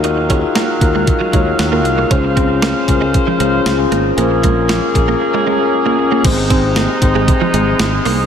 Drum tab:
CC |--------|--------|--------|x-------|
HH |xxxxxxxx|xxxxxxxx|xxxx----|xxxxxxxo|
SD |--o---o-|--o---o-|--o-----|--o---o-|
BD |-o-ooo--|oo-oo---|-o-o----|oo-oo---|